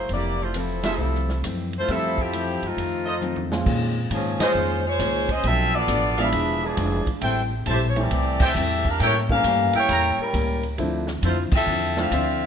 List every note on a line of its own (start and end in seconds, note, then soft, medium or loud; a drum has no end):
0.09 0.95 F1 medium
0.09 0.41 F2 soft
0.09 0.41 E3 soft
0.09 0.42 A3 soft
0.09 0.42 C4 soft
0.09 0.41 E4 medium
0.09 0.41 G4 medium
0.09 0.41 D5 medium
0.09 kick soft
0.09 ride medium
0.13 0.41 A#3 medium
0.42 0.56 A3 medium
0.42 0.56 E4 medium
0.42 0.56 F4 medium
0.42 0.56 C5 medium
0.54 0.86 F2 medium
0.54 0.86 E3 medium
0.54 0.85 F3 medium
0.54 0.86 A3 medium
0.54 0.86 C4 medium
0.54 0.85 C4 medium
0.54 0.85 E4 medium
0.54 0.85 A4 medium
0.54 hi-hat pedal medium
0.54 ride medium
0.83 1.38 F3 medium
0.83 1.41 G3 medium
0.83 1.41 A3 medium
0.83 1.41 C4 medium
0.83 1.42 E4 medium
0.83 1.38 E4 medium
0.83 0.94 F4 medium
0.83 0.94 A4 medium
0.83 0.94 C5 medium
0.83 0.94 E5 medium
0.83 snare medium
0.83 ride medium
0.88 1.38 C4 medium
0.88 1.38 A4 medium
0.98 1.40 C2 medium
0.98 1.30 F2 soft
0.98 1.31 E3 soft
0.98 1.31 A3 soft
0.98 1.31 C4 medium
1.15 snare soft
1.29 snare soft
1.43 1.75 F2 medium
1.43 1.85 F#2 medium
1.43 1.75 E3 medium
1.43 1.75 A3 medium
1.43 1.75 C4 medium
1.43 cross-stick medium
1.43 hi-hat pedal medium
1.43 ride medium
1.73 1.89 E4 medium
1.73 ride soft
1.77 1.89 A3 medium
1.77 1.90 F4 medium
1.77 1.90 C5 medium
1.88 2.19 F2 soft
1.88 2.58 F2 medium
1.88 2.20 E3 soft
1.88 2.19 F3 medium
1.88 2.15 G3 medium
1.88 2.15 A3 medium
1.88 2.20 A3 soft
1.88 2.15 C4 medium
1.88 2.20 C4 soft
1.88 2.20 C4 medium
1.88 2.56 E4 medium
1.88 2.16 E4 medium
1.88 2.56 A4 medium
1.88 2.19 A4 medium
1.88 2.56 C5 medium
1.88 2.56 E5 medium
1.88 kick soft
1.88 ride medium
1.92 2.20 E4 medium
2.18 2.64 F3 medium
2.18 2.64 C4 medium
2.18 2.64 E4 medium
2.18 2.63 G4 medium
2.18 kick medium
2.33 2.64 F2 medium
2.33 2.64 E3 medium
2.33 2.64 A3 medium
2.33 2.64 C4 medium
2.33 hi-hat pedal medium
2.33 ride medium
2.62 2.76 F#2 medium
2.62 3.53 D#4 medium
2.62 ride soft
2.66 3.53 A3 medium
2.66 3.53 C4 medium
2.66 3.53 F4 medium
2.77 3.62 F2 medium
2.77 3.08 F2 soft
2.77 3.09 D#3 soft
2.77 3.09 A3 soft
2.77 3.09 C4 soft
2.77 kick soft
2.77 ride medium
3.06 3.17 F4 medium
3.06 3.17 A4 medium
3.06 3.17 C5 medium
3.06 3.16 D#5 loud
3.21 3.52 F2 medium
3.21 3.53 D#3 medium
3.21 3.53 A3 medium
3.21 3.53 C4 medium
3.21 hi-hat pedal medium
3.21 high tom soft
3.36 floor tom soft
3.52 4.08 A#2 medium
3.52 4.08 G#3 medium
3.52 4.08 C4 medium
3.52 4.08 C#4 medium
3.52 4.09 F4 medium
3.52 snare medium
3.66 4.09 A#2 medium
3.66 3.97 A#2 medium
3.66 3.98 D#3 medium
3.66 3.98 G#3 medium
3.66 3.98 C#4 medium
3.66 kick medium
3.66 crash medium
4.10 4.38 G#2 medium
4.10 4.41 A#2 medium
4.10 4.42 D#3 medium
4.10 4.39 F3 medium
4.10 4.42 G#3 medium
4.10 4.39 C4 medium
4.10 4.42 C#4 medium
4.10 4.39 C#4 medium
4.10 4.39 G#4 medium
4.10 kick soft
4.10 hi-hat pedal medium
4.10 ride medium
4.39 4.83 G#3 medium
4.39 4.83 C#4 medium
4.39 4.82 F4 medium
4.39 4.50 G#4 medium
4.39 4.50 C5 medium
4.39 4.83 C5 medium
4.39 4.50 C#5 medium
4.39 4.50 D#5 loud
4.39 muted upright bass stroke soft
4.39 snare medium
4.39 ride medium
4.54 4.98 F2 medium
4.54 4.85 A#2 soft
4.54 4.86 D#3 soft
4.54 4.86 G#3 medium
4.54 4.86 C#4 medium
4.87 5.30 G#3 medium
4.87 5.30 F4 medium
4.87 5.29 C5 medium
4.87 5.31 C#5 medium
4.99 5.43 C#2 medium
4.99 5.30 A#2 medium
4.99 5.30 D#3 medium
4.99 5.31 G#3 medium
4.99 5.31 C#4 medium
4.99 kick soft
4.99 snare soft
4.99 hi-hat pedal medium
4.99 ride medium
5.29 5.45 C#4 medium
5.29 5.45 G#4 medium
5.29 5.45 C5 medium
5.29 5.45 D#5 loud
5.29 kick medium
5.29 ride soft
5.43 5.87 B1 medium
5.43 5.75 B2 soft
5.43 5.75 F3 soft
5.43 5.75 A3 soft
5.43 5.74 C4 loud
5.43 5.76 D4 soft
5.43 5.74 F4 medium
5.43 5.74 A4 medium
5.43 5.74 E5 loud
5.43 kick soft
5.43 ride medium
5.75 6.19 B3 medium
5.75 6.19 F4 medium
5.75 6.19 A4 medium
5.75 6.19 D5 loud
5.88 6.31 A1 medium
5.88 6.19 B2 medium
5.88 6.19 F3 medium
5.88 6.20 A3 medium
5.88 6.20 D4 medium
5.88 kick soft
5.88 hi-hat pedal medium
5.88 ride medium
6.18 6.75 F3 medium
6.18 6.75 G#3 medium
6.18 6.75 B3 medium
6.18 6.75 D4 medium
6.18 6.64 D4 medium
6.18 6.75 E4 medium
6.18 6.28 G#4 medium
6.18 6.64 G#4 medium
6.18 6.64 B4 medium
6.18 6.28 D5 medium
6.18 6.28 E5 medium
6.18 6.64 E5 loud
6.18 6.28 F5 medium
6.18 ride medium
6.32 6.76 E1 medium
6.32 6.64 E3 soft
6.32 6.64 G#3 soft
6.32 6.65 D4 medium
6.32 6.65 F4 soft
6.32 kick soft
6.32 ride medium
6.65 7.08 F3 medium
6.65 7.08 B3 medium
6.65 7.08 D4 medium
6.65 7.08 G#4 medium
6.77 7.05 F1 medium
6.77 7.08 E3 medium
6.77 7.09 G#3 medium
6.77 7.09 D4 medium
6.77 7.09 F4 medium
6.77 kick soft
6.77 hi-hat pedal medium
6.77 ride medium
7.06 muted upright bass stroke soft
7.06 kick medium
7.06 ride soft
7.21 7.65 A1 medium
7.21 7.53 A2 medium
7.21 7.53 G3 medium
7.21 7.53 C4 medium
7.21 7.54 E4 medium
7.21 7.42 A4 medium
7.21 7.42 C5 medium
7.21 7.42 E5 medium
7.21 7.42 G5 medium
7.21 kick soft
7.21 ride medium
7.66 8.10 A#1 medium
7.66 7.97 A2 medium
7.66 7.98 G3 medium
7.66 7.98 C4 medium
7.66 7.98 E4 medium
7.66 7.87 A4 medium
7.66 7.87 C5 medium
7.66 7.86 E5 medium
7.66 7.86 A5 medium
7.66 kick soft
7.66 hi-hat pedal medium
7.66 ride medium
7.71 7.79 A3 medium
7.71 7.79 E4 medium
7.71 7.79 G4 medium
7.71 7.79 C5 medium
7.89 7.97 C#5 medium
7.96 8.53 E3 medium
7.96 8.53 G3 medium
7.96 8.53 A3 medium
7.96 8.53 C4 medium
7.96 8.53 E4 medium
7.96 8.43 G4 medium
7.96 8.43 D5 medium
7.96 ride medium
8.00 8.43 C4 medium
8.00 8.43 A4 medium
8.11 8.54 C2 medium
8.11 8.42 A2 soft
8.11 8.43 G3 medium
8.11 8.43 C4 medium
8.11 8.44 E4 medium
8.11 kick soft
8.11 ride medium
8.40 8.51 A4 medium
8.40 8.51 C5 medium
8.40 8.51 E5 medium
8.40 8.51 G5 loud
8.40 kick medium
8.40 crash medium
8.44 8.87 C4 medium
8.44 8.87 G4 medium
8.44 8.87 A4 medium
8.44 8.87 E5 medium
8.55 8.99 E2 medium
8.55 8.87 A2 medium
8.55 8.87 G3 medium
8.55 8.87 C4 medium
8.55 8.88 E4 medium
8.55 hi-hat pedal medium
8.85 9.02 D4 medium
8.85 9.02 G4 medium
8.85 9.01 A#4 medium
8.85 9.02 F5 medium
8.85 kick medium
9.00 9.43 A2 medium
9.00 9.32 A2 soft
9.00 9.32 G3 medium
9.00 9.32 A#3 medium
9.00 9.33 C#4 medium
9.00 9.16 E4 loud
9.00 9.20 A4 medium
9.00 9.20 A#4 medium
9.00 9.15 A#4 medium
9.00 9.20 C#5 medium
9.00 9.16 C#5 medium
9.00 9.20 G5 medium
9.00 9.15 G5 loud
9.00 kick soft
9.00 ride medium
9.29 9.87 E3 medium
9.29 9.87 G3 medium
9.29 9.87 A3 medium
9.29 9.87 A#3 medium
9.29 9.87 C#4 medium
9.29 9.72 C#4 medium
9.29 9.72 G4 medium
9.29 9.72 A#4 medium
9.29 9.72 F5 loud
9.29 kick medium
9.44 9.72 G2 medium
9.44 9.76 A2 medium
9.44 9.77 G3 medium
9.44 9.77 A#3 medium
9.44 9.77 C#4 medium
9.44 kick soft
9.44 hi-hat pedal medium
9.44 ride medium
9.73 10.16 E4 medium
9.73 10.17 A#4 medium
9.73 10.16 C#5 medium
9.73 10.16 G5 loud
9.73 muted upright bass stroke soft
9.73 ride soft
9.89 10.16 E2 medium
9.89 10.20 A2 soft
9.89 10.21 G3 soft
9.89 10.21 A#3 medium
9.89 10.21 C#4 medium
9.89 10.09 A4 medium
9.89 10.09 A#4 medium
9.89 10.09 C#5 medium
9.89 10.09 A#5 medium
9.89 kick soft
9.89 ride medium
10.18 10.64 G3 medium
10.18 10.64 C#4 medium
10.18 10.64 E4 medium
10.18 10.64 A#4 medium
10.18 muted upright bass stroke soft
10.33 10.77 C#2 medium
10.33 10.64 A2 medium
10.33 10.65 G3 medium
10.33 10.65 A#3 medium
10.33 10.65 C#4 medium
10.33 kick soft
10.33 hi-hat pedal medium
10.33 ride medium
10.63 ride soft
10.78 11.21 D2 medium
10.78 11.09 D3 medium
10.78 11.05 F3 medium
10.78 11.09 F3 medium
10.78 11.05 A3 medium
10.78 11.05 C4 medium
10.78 11.10 C4 medium
10.78 11.05 D4 medium
10.78 11.05 E4 medium
10.78 11.10 E4 medium
10.78 kick soft
10.78 ride medium
11.07 snare medium
11.22 11.50 F2 medium
11.22 11.54 D3 medium
11.22 11.55 F3 medium
11.22 11.38 A3 medium
11.22 11.55 C4 medium
11.22 11.55 E4 medium
11.22 11.38 E4 medium
11.22 11.38 F4 medium
11.22 11.38 C5 medium
11.22 kick soft
11.22 hi-hat pedal medium
11.22 ride medium
11.51 11.95 C4 medium
11.51 11.95 F4 medium
11.51 11.95 A4 medium
11.51 11.95 E5 medium
11.51 muted upright bass stroke soft
11.51 kick medium
11.51 crash medium
11.66 12.10 E2 medium
11.66 11.99 D3 soft
11.66 11.99 F3 soft
11.66 11.99 C4 medium
11.66 12.00 E4 medium
11.97 12.11 F3 medium
11.97 12.11 A3 medium
11.97 12.11 C4 medium
11.97 12.43 C4 medium
11.97 12.11 D4 medium
11.97 12.11 E4 medium
11.97 12.43 A4 medium
11.97 12.43 E5 medium
11.97 12.43 F5 medium
11.97 snare medium
12.11 12.46 D2 medium
12.11 12.43 D3 medium
12.11 12.43 F3 medium
12.11 12.44 C4 medium
12.11 12.44 E4 medium
12.11 12.46 F4 medium
12.11 12.46 C5 medium
12.11 12.46 D5 medium
12.11 12.46 E5 medium
12.11 kick soft
12.11 hi-hat pedal medium
12.11 ride medium